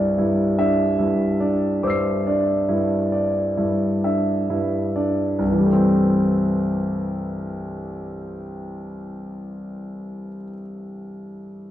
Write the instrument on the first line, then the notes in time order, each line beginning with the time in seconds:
grand piano
Already playing: C2 G2 D4 E4 C5 D5
0.18 G2 E4
0.58 D4 E5
0.99 G2 E4
1.40 D4 D5
1.83 G2 C5 D6
1.87 E6 C7
2.27 D4 D5
2.69 G2 E4
3.12 D5
3.57 G2 E4
4.04 D4 E5
4.49 G2 E4
4.96 D4 D5
5.39 C2
5.45 G2
5.52 E3
5.59 G3
5.64 A3
5.72 C4